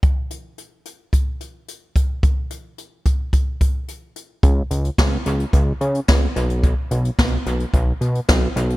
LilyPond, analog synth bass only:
\new Staff \with { instrumentName = "Analog synth bass" } { \clef bass \time 4/4 \key cis \phrygian \tempo 4 = 109 r1 | r1 | cis,8 cis,8 cis,8 cis,8 cis,8 cis8 cis,8 b,,8~ | b,,8 b,,8 b,,8 b,,8 b,,8 b,8 b,,8 b,,8 | }